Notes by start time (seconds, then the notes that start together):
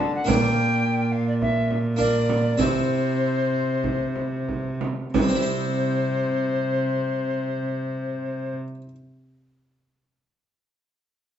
Already playing: D3 A3 D4 F#4 A5
0.00 frame drum
0.14 F#5
0.24 A#2 A#3 D4 F4 G5, frame drum
1.12 F5
1.28 D5
1.41 E5, frame drum
1.71 frame drum
1.96 A#3 D4 F4 D5, frame drum
2.29 frame drum
2.57 C3 C4 E4 C5, frame drum
3.84 frame drum
4.16 frame drum
4.48 frame drum
4.81 frame drum
5.13 C3 C5, frame drum
5.22 G3
5.28 C4
5.35 E4
5.42 C5